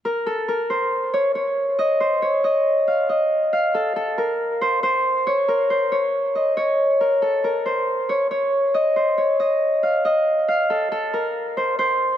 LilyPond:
\new Staff \with { instrumentName = "Harp" } { \time 4/4 \key bes \minor \tempo 4 = 138 bes'8 a'8 bes'8 c''8 r8 des''8 des''8 r8 | ees''8 c''8 des''8 ees''8 r8 f''8 ees''4 | f''8 a'8 a'8 bes'8 r8 c''8 c''8 r8 | des''8 bes'8 c''8 des''8 r8 ees''8 des''4 |
bes'8 a'8 bes'8 c''8 r8 des''8 des''8 r8 | ees''8 c''8 des''8 ees''8 r8 f''8 ees''4 | f''8 a'8 a'8 bes'8 r8 c''8 c''8 r8 | }